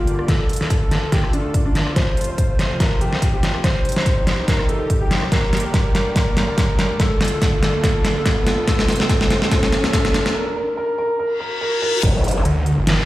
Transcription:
Already playing: supersaw synth G2 D3 A#3 G4 D5, grand piano F4, riser
0.07 closed hi-hat
0.19 cross-stick
0.28 supersaw synth D2 A3 F4 A4, grand piano A4, kick, snare, closed hi-hat
0.49 closed hi-hat
0.53 closed hi-hat
0.56 closed hi-hat
0.61 grand piano A4, snare
0.70 kick, closed hi-hat
0.91 grand piano A4, snare, closed hi-hat
1.12 grand piano G4, kick, snare, closed hi-hat
1.24 cross-stick
1.33 grand piano D4, closed hi-hat
1.54 kick, closed hi-hat
1.66 grand piano D4
1.75 snare, closed hi-hat
1.87 cross-stick
1.96 supersaw synth F2 C3 A3 C5, grand piano C5, kick, snare, closed hi-hat
2.17 closed hi-hat
2.21 closed hi-hat
2.24 closed hi-hat
2.29 grand piano C5
2.38 kick, closed hi-hat
2.59 grand piano C5, snare, closed hi-hat
2.80 grand piano A#4, kick, snare, closed hi-hat
3.01 grand piano G4, closed hi-hat
3.13 snare
3.22 kick, closed hi-hat
3.34 grand piano G4
3.43 snare, closed hi-hat
3.54 cross-stick
3.64 supersaw synth C2 G3 D#4 G4, grand piano C5, kick, snare, closed hi-hat
3.85 closed hi-hat
3.89 closed hi-hat
3.92 closed hi-hat
3.96 grand piano C5, snare
4.06 kick, closed hi-hat
4.27 grand piano C5, snare, closed hi-hat
4.48 grand piano A#4, kick, snare, closed hi-hat
4.59 cross-stick
4.69 grand piano A4, closed hi-hat
4.90 kick, closed hi-hat
5.01 grand piano G4
5.11 snare, closed hi-hat
5.22 cross-stick
5.32 supersaw synth G2 D3 A#3 D5, grand piano A#4, kick, snare, closed hi-hat
5.53 snare, closed hi-hat
5.57 closed hi-hat
5.60 closed hi-hat
5.64 grand piano A#4
5.74 kick, snare, closed hi-hat
5.95 grand piano A#4, snare, closed hi-hat
6.16 grand piano A#4, kick, snare, closed hi-hat
6.37 snare, closed hi-hat
6.48 grand piano A#4
6.58 kick, snare, closed hi-hat
6.79 grand piano A#4, snare, closed hi-hat
7.00 supersaw synth D2 A3 F4 A4, grand piano A4, kick, snare, closed hi-hat
7.21 snare, closed hi-hat
7.25 closed hi-hat
7.28 closed hi-hat
7.32 grand piano A4
7.42 kick, snare, closed hi-hat
7.63 grand piano A4, snare, closed hi-hat
7.84 grand piano A4, kick, snare, closed hi-hat
8.05 snare, closed hi-hat
8.16 grand piano A4
8.26 kick, snare, closed hi-hat
8.47 grand piano A4, snare, closed hi-hat
8.67 supersaw synth F2 C3 C5, grand piano A4, kick, snare, closed hi-hat
8.79 snare
8.89 snare, closed hi-hat
8.92 closed hi-hat
8.96 closed hi-hat
9.00 grand piano A4, snare
9.09 grand piano A4, kick, snare, closed hi-hat
9.21 snare
9.30 snare, closed hi-hat
9.42 grand piano A4, snare
9.51 grand piano A4, kick, snare, closed hi-hat
9.63 snare
9.72 snare, closed hi-hat
9.84 grand piano A4, snare
9.93 grand piano A4, kick, snare, closed hi-hat
10.05 snare
10.14 snare, closed hi-hat
10.26 grand piano A4, snare
10.35 grand piano A#4
10.56 grand piano A#4
10.77 grand piano A#4
10.98 grand piano A#4
11.19 grand piano A#4, reverse cymbal
11.40 grand piano A#4
11.61 grand piano A#4
11.82 grand piano A#4
12.03 wobble bass G1, kick, closed hi-hat, crash, impact
12.24 closed hi-hat
12.28 closed hi-hat
12.31 closed hi-hat
12.45 detuned saw bass D2, closed hi-hat
12.66 closed hi-hat
12.78 detuned saw bass G1
12.87 snare, closed hi-hat

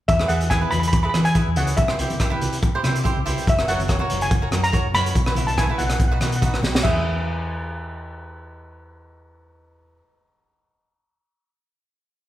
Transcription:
0.08 fingered electric bass E2, steel pan E5, kick, closed hi-hat
0.20 cavaquinho E4 G#4 B4, cross-stick
0.28 fingered electric bass E2, cavaquinho E4 G#4 B4, steel pan F#5, closed hi-hat
0.41 closed hi-hat
0.50 cavaquinho E4 G#4 B4, steel pan G#5, kick, cross-stick, closed hi-hat
0.61 cavaquinho E4 G#4 B4, high conga
0.71 fingered electric bass E2, steel pan B5, closed hi-hat, low conga
0.80 steel pan B5, closed hi-hat
0.88 steel pan B5
0.93 steel pan B5, kick, closed hi-hat
1.03 cavaquinho E4 G#4 B4, steel pan B5
1.09 steel pan B5
1.14 fingered electric bass E3, cavaquinho E4 G#4 B4, cross-stick, closed hi-hat, high conga
1.25 steel pan G#5, closed hi-hat
1.35 cavaquinho E4 G#4 B4, kick, closed hi-hat
1.47 fingered electric bass E2
1.56 fingered electric bass C#2, cavaquinho E4 G#4 C#5, steel pan F#5, closed hi-hat, low conga
1.67 closed hi-hat
1.77 fingered electric bass C2, steel pan E5, kick, closed hi-hat
1.88 cavaquinho E4 G4 C5, cross-stick
1.99 fingered electric bass C2, cavaquinho E4 G4 C5, closed hi-hat
2.10 closed hi-hat, high conga
2.20 cavaquinho E4 G4 C5, kick, cross-stick, closed hi-hat
2.30 cavaquinho E4 G4 B4, high conga
2.41 fingered electric bass C2, closed hi-hat, low conga
2.53 closed hi-hat
2.63 kick, closed hi-hat
2.75 cavaquinho E4 G4 C5
2.83 fingered electric bass C3, cavaquinho E4 G4 C5, cross-stick, closed hi-hat, high conga
2.95 closed hi-hat
3.04 cavaquinho E4 G4 C5, kick, closed hi-hat
3.17 fingered electric bass C2
3.26 fingered electric bass C2, cavaquinho E4 G4 C5, closed hi-hat, low conga
3.38 closed hi-hat
3.47 fingered electric bass F#1, steel pan E5, kick, closed hi-hat
3.59 cavaquinho F#4 A#4 C#5, cross-stick
3.68 fingered electric bass F#1, cavaquinho F#4 A#4 C#5, steel pan F#5, closed hi-hat
3.79 closed hi-hat, high conga
3.88 cavaquinho F#4 A#4 C#5, kick, cross-stick, closed hi-hat
3.99 cavaquinho F#4 A#4 C#5, high conga
4.09 fingered electric bass F#1, closed hi-hat, low conga
4.21 steel pan G#5, closed hi-hat
4.31 kick, closed hi-hat
4.42 cavaquinho F#4 A#4 C#5
4.51 fingered electric bass F#2, cavaquinho F#4 A#4 C#5, cross-stick, closed hi-hat, high conga
4.64 steel pan A#5, closed hi-hat
4.72 cavaquinho F#4 A#4 C#5, kick, closed hi-hat
4.85 fingered electric bass F#1
4.94 fingered electric bass F#2, cavaquinho F#4 A#4 C#5, steel pan B5, closed hi-hat, low conga
5.06 closed hi-hat
5.15 fingered electric bass B1, kick, closed hi-hat, low conga
5.26 cavaquinho E4 F#4 B4, cross-stick, high conga
5.35 fingered electric bass B1, cavaquinho E4 F#4 B4, closed hi-hat, high conga, low conga
5.46 steel pan A5, closed hi-hat, high conga
5.58 cavaquinho E4 F#4 B4, steel pan G#5, kick, cross-stick, closed hi-hat
5.67 cavaquinho E4 F#4 B4, high conga
5.78 fingered electric bass B1, steel pan F#5, closed hi-hat, low conga
5.87 steel pan F#5, cross-stick, closed hi-hat
5.93 steel pan F#5
5.99 fingered electric bass B1, steel pan F#5, kick, closed hi-hat
6.08 cavaquinho D#4 F#4, steel pan F#5
6.13 cavaquinho B4, steel pan F#5
6.20 fingered electric bass B2, cavaquinho D#4 F#4 B4, steel pan F#5, cross-stick, closed hi-hat, high conga
6.30 steel pan F#5, closed hi-hat
6.36 steel pan F#5
6.42 cavaquinho D#4 F#4 B4, kick, closed hi-hat
6.46 steel pan F#5
6.54 fingered electric bass B1, cross-stick
6.63 fingered electric bass B1, cavaquinho D#4 F#4 B4, snare, low conga
6.75 snare
6.82 fingered electric bass E2, cavaquinho E4 G#4, steel pan E5, kick, crash, high conga
6.87 cavaquinho B4

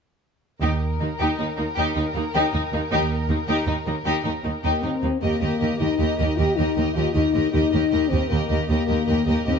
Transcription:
0.61 cello section D#2, double bass section D#2, viola section D#4, violin section G4 A#4
1.00 cello section D#2, violin section A#3, viola section D#4
1.19 cello section D#2, viola section D#4, violin section G4
1.39 cello section D#2, violin section D#4, viola section D#4
1.57 cello section D#2, violin section A#3, viola section D#4
1.75 cello section D#2, viola section D#4, violin section G4
1.94 cello section D#2, violin section D#4, viola section D#4
2.15 cello section D#2, violin section A#3, viola section D#4
2.34 cello section D#2, viola section D#4, violin section G4
2.53 cello section D#2, violin section D#4, viola section D#4
2.73 cello section D#2, violin section A#3, viola section D#4
2.91 cello section D#2, double bass section D#2, viola section D#4, violin section G4
3.29 cello section D#2, violin section A#3, viola section D#4
3.47 cello section D#2, viola section D#4, violin section G4
3.67 cello section D#2, violin section D#4, viola section D#4
3.86 cello section D#2, violin section A#3, viola section D#4
4.05 cello section D#2, viola section D#4, violin section G4
4.24 cello section D#2, violin section D#4, viola section D#4
4.44 cello section D#2, violin section A#3, viola section D#4
4.63 cello section D#2, french horn section A#3, viola section D#4, violin section G4
4.82 cello section D#2, french horn section C4, viola section D#4, violin section D#4
5.02 cello section D#2, violin section A#3, viola section D#4
5.21 cello section D#2, double bass section D#2, french horn section A#3, viola section G4, violin section A#4 D#5
5.41 cello section D#2, double bass section D#2, viola section G4, violin section A#4 D#5
5.60 cello section D#2, double bass section D#2, viola section G4, violin section A#4 D#5
5.79 cello section D#2, double bass section D#2, french horn section D#4, viola section G4, violin section A#4 D#5
5.99 cello section D#2, double bass section D#2, viola section G4, violin section A#4 D#5
6.18 cello section D#2, double bass section D#2, viola section G4, violin section A#4 D#5
6.37 double bass section D#2, cello section D#2, french horn section G4, viola section G4, violin section A#4 D#5
6.56 double bass section D#2, cello section D#2, french horn section D#4, viola section G4, violin section A#4 D#5
6.76 cello section D#2, double bass section D#2, viola section G4, violin section A#4 D#5
6.94 cello section D#2, double bass section D#2, french horn section F4, viola section G4, violin section A#4 D#5
7.14 cello section D#2, double bass section D#2, french horn section D#4, viola section G4, violin section A#4 D#5
7.34 cello section D#2, double bass section D#2, viola section G4, violin section A#4 D#5
7.52 cello section D#2, double bass section D#2, french horn section D#4, viola section G4, violin section A#4 D#5
7.72 cello section D#2, double bass section D#2, viola section G4, violin section A#4 D#5
7.90 double bass section D#2, cello section D#2, viola section G4, violin section A#4 D#5
8.09 double bass section D#2, cello section D#2, french horn section C4, viola section G4, violin section A#4 D#5
8.29 double bass section D#2, cello section D#2, french horn section A#3, viola section G4, violin section A#4 D#5
8.49 double bass section D#2, cello section D#2, viola section G4, violin section A#4 D#5
8.68 double bass section D#2, cello section D#2, french horn section A#3, viola section G4, violin section A#4 D#5
8.88 double bass section D#2, cello section D#2, viola section G4, violin section A#4 D#5
9.07 double bass section D#2, cello section D#2, viola section G4, violin section A#4 D#5
9.26 double bass section D#2, cello section D#2, french horn section A#3, viola section G4, violin section A#4 D#5
9.45 double bass section D#2, cello section D#2, french horn section C4, viola section G4, violin section A#4 D#5

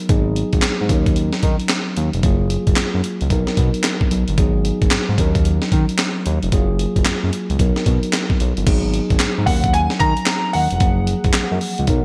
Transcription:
Already playing: tine electric piano F#3 B3 D#4 A#4
0.09 analog synth bass G#1, tine electric piano F#3 A#3 D#4 G#4, kick, closed hi-hat
0.16 tine electric piano B3
0.36 closed hi-hat
0.53 analog synth bass G#1, kick, closed hi-hat
0.62 analog synth bass G#2, snare, clap, closed hi-hat
0.81 analog synth bass G#2
0.89 analog synth bass D#2, tine electric piano F#3 C#4 D#4 A#4, kick, closed hi-hat
1.06 kick, closed hi-hat
1.16 closed hi-hat
1.33 snare
1.43 analog synth bass D#3, kick, closed hi-hat
1.60 closed hi-hat
1.69 snare, clap, closed hi-hat
1.97 analog synth bass D#2, closed hi-hat
2.13 analog synth bass F1, closed hi-hat
2.23 analog synth bass F#1, tine electric piano F#3 A#3 F4 G#4, kick, closed hi-hat
2.50 closed hi-hat
2.67 analog synth bass F#1, kick, closed hi-hat
2.76 analog synth bass F#2, snare, clap, closed hi-hat
2.94 analog synth bass F#2
3.04 closed hi-hat
3.21 analog synth bass C#2, closed hi-hat
3.30 analog synth bass B1, tine electric piano F#3 B3 D#4 A#4, kick, closed hi-hat
3.47 snare
3.57 analog synth bass B2, kick, closed hi-hat
3.74 closed hi-hat
3.84 snare, clap, closed hi-hat
4.01 kick
4.11 analog synth bass B1, closed hi-hat
4.28 analog synth bass G1, closed hi-hat
4.38 analog synth bass G#1, tine electric piano F#3 B3 D#4 G#4, kick, closed hi-hat
4.65 closed hi-hat
4.82 analog synth bass G#1, kick, closed hi-hat
4.91 analog synth bass G#2, snare, clap, closed hi-hat
5.09 analog synth bass G#2
5.18 analog synth bass D#2, tine electric piano F#3 C#4 D#4 A#4, kick, closed hi-hat
5.35 kick, closed hi-hat
5.45 closed hi-hat
5.62 snare
5.72 analog synth bass D#3, kick, closed hi-hat
5.89 closed hi-hat
5.98 snare, clap, closed hi-hat
6.26 analog synth bass D#2, closed hi-hat
6.43 analog synth bass F1, closed hi-hat
6.52 analog synth bass F#1, tine electric piano F#3 A#3 F4 G#4, kick, closed hi-hat
6.79 closed hi-hat
6.96 analog synth bass F#1, kick, closed hi-hat
7.05 analog synth bass F#2, snare, clap, closed hi-hat
7.23 analog synth bass F#2
7.33 closed hi-hat
7.50 analog synth bass C#2, closed hi-hat
7.58 analog synth bass B1, tine electric piano F#3 B3 D#4 A#4, kick, closed hi-hat
7.76 snare
7.86 analog synth bass B2, kick, closed hi-hat
8.03 closed hi-hat
8.13 snare, clap, closed hi-hat
8.30 kick
8.40 analog synth bass B1, closed hi-hat
8.57 analog synth bass G1, closed hi-hat
8.66 analog synth bass G#1, tine electric piano F#3 B3 D#4 G#4, kick, closed hi-hat, crash
8.94 closed hi-hat
9.10 analog synth bass G#1, kick, closed hi-hat
9.20 analog synth bass G#2, snare, clap, closed hi-hat
9.38 analog synth bass G#2
9.46 analog synth bass D#2, tine electric piano F#3 C#4 D#4 A#4, grand piano F#5, kick, open hi-hat
9.64 kick, closed hi-hat
9.73 grand piano G#5, closed hi-hat
9.90 snare
10.00 analog synth bass D#3, grand piano A#5, kick, closed hi-hat
10.17 closed hi-hat
10.26 snare, clap, closed hi-hat
10.53 analog synth bass D#2, grand piano F#5, open hi-hat
10.71 analog synth bass F1, closed hi-hat
10.80 analog synth bass F#1, tine electric piano F3 F#3 A#3 G#4, kick, closed hi-hat
11.07 closed hi-hat
11.24 analog synth bass F#1, kick, closed hi-hat
11.33 analog synth bass F#2, snare, clap, closed hi-hat
11.51 analog synth bass F#2
11.61 open hi-hat
11.78 analog synth bass C#2, closed hi-hat
11.87 analog synth bass B1, tine electric piano F#3 B3 D#4 A#4, kick, closed hi-hat

